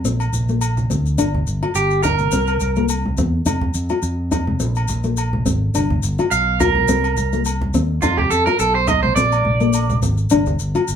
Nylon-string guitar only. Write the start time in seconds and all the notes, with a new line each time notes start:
0.05 C4
0.49 A#3
0.90 C4
1.18 D4
1.63 F4
2.05 D#4
2.33 C4
2.77 A#3
3.18 C4
3.46 D#4
3.90 F4
4.31 D#4
4.60 C4
5.04 A#3
5.46 C4
5.75 D4
6.19 F4
6.60 F4
6.89 C4
7.33 A#3
7.75 C4
8.03 D#4
8.47 F4
8.88 D#4
9.17 C4
9.60 A#3
10.02 C4
10.31 D4
10.75 F4